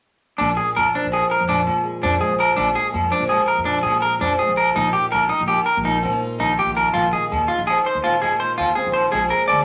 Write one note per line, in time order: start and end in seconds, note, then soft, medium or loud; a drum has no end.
0.38 0.56 A#1 medium
0.38 1.47 A#2 medium
0.38 0.50 D4 medium
0.38 low agogo medium
0.57 1.65 D4 soft
0.57 0.68 G#4 medium
0.76 0.92 F2 medium
0.76 0.87 A#4 medium
0.76 1.83 A#4 soft
0.76 low agogo medium
0.94 2.00 F3 medium
0.94 1.06 D4 medium
1.05 1.20 A#1 medium
1.12 2.18 G#3 soft
1.12 1.24 G#4 medium
1.12 low agogo medium
1.31 1.42 A#4 medium
1.41 1.64 F2 medium
1.48 2.56 A#2 medium
1.48 1.60 D4 medium
1.48 low agogo medium
1.66 1.99 A#2 medium
1.66 2.55 D4 soft
1.66 low agogo medium
1.84 2.55 G#4 soft
2.02 2.19 F2 medium
2.02 2.55 F3 medium
2.02 2.14 D4 medium
2.02 low agogo medium
2.19 3.29 G#3 medium
2.19 2.32 G#4 medium
2.31 2.55 A#1 medium
2.39 2.51 A#4 medium
2.39 low agogo medium
2.56 2.74 A#1 medium
2.56 3.64 A#2 medium
2.56 2.68 D4 medium
2.56 low agogo medium
2.75 3.84 D4 medium
2.75 2.87 G#4 medium
2.92 3.10 F2 medium
2.92 4.02 A#4 soft
2.92 low agogo medium
3.09 4.18 F3 medium
3.09 3.23 D4 medium
3.20 3.37 A#1 medium
3.29 4.39 G#3 soft
3.29 3.41 G#4 medium
3.29 low agogo medium
3.48 3.59 A#4 medium
3.58 3.82 F2 medium
3.64 4.74 A#2 medium
3.64 3.77 D4 medium
3.64 low agogo soft
3.83 4.17 A#2 medium
3.83 4.74 D4 soft
3.83 3.95 G#4 medium
3.87 low agogo medium
4.02 4.74 G#4 medium
4.02 4.14 A#4 medium
4.19 4.37 F2 medium
4.19 4.73 F3 medium
4.19 4.32 D4 medium
4.23 low agogo medium
4.39 4.77 G#3 medium
4.39 4.50 G#4 medium
4.49 4.73 A#1 medium
4.57 4.69 A#4 medium
4.57 low agogo medium
4.75 4.92 A#1 medium
4.75 5.30 A#2 medium
4.75 4.87 D#4 medium
4.75 low agogo medium
4.92 6.02 D#4 medium
4.92 5.04 G4 medium
5.12 5.29 A#1 medium
5.12 6.21 G4 medium
5.12 5.23 A#4 medium
5.12 low agogo medium
5.28 5.41 D#4 medium
5.28 muted steel-string acoustic guitar stroke medium
5.40 5.56 A#1 medium
5.46 6.57 A#3 soft
5.46 5.59 G4 medium
5.46 low agogo medium
5.66 5.77 A#4 medium
5.77 6.01 A#1 medium
5.83 6.39 A#2 medium
5.83 5.96 D#4 medium
5.83 low agogo medium
6.03 6.36 A#2 medium
6.03 6.12 C4 soft
6.03 low agogo medium
6.12 6.94 D#4 soft
6.22 7.29 F4 medium
6.38 6.56 A#1 medium
6.38 7.48 D#3 soft
6.38 6.51 D#4 medium
6.38 low agogo medium
6.59 6.93 A#3 soft
6.59 6.70 G4 medium
6.66 6.91 A#1 medium
6.77 6.88 A#4 medium
6.77 low agogo soft
6.94 7.11 A#1 medium
6.94 7.49 A#2 medium
6.94 7.05 F4 medium
6.94 low agogo medium
7.13 8.22 D#4 medium
7.13 7.24 G#4 medium
7.30 7.48 D#2 medium
7.30 8.40 G#4 medium
7.30 low agogo medium
7.48 8.58 D#3 medium
7.48 7.60 F4 medium
7.59 7.74 A#1 medium
7.67 8.75 C4 soft
7.67 7.78 G#4 medium
7.67 low agogo medium
7.86 7.97 C5 medium
7.95 8.19 D#2 medium
8.04 8.59 A#2 medium
8.04 8.15 F4 medium
8.04 low agogo medium
8.22 8.54 A#2 medium
8.22 9.12 D#4 soft
8.22 8.33 G#4 medium
8.22 low agogo medium
8.40 9.14 F4 medium
8.40 8.51 C5 medium
8.58 8.75 D#2 medium
8.58 9.12 D#3 soft
8.58 8.69 F4 medium
8.58 low agogo medium
8.75 9.11 C4 soft
8.75 8.87 G#4 medium
8.87 9.10 A#1 medium
8.94 9.05 C5 medium
8.94 low agogo medium
9.11 9.29 A#1 medium
9.11 9.65 A#2 medium
9.11 9.65 F3 soft
9.11 9.65 G#3 soft
9.11 9.52 D4 soft
9.11 9.23 G#4 medium
9.11 9.49 G#4 medium
9.11 low agogo medium
9.30 9.42 A#4 medium
9.48 9.65 D2 medium
9.48 9.65 G#4 medium
9.48 9.59 D5 medium
9.48 low agogo medium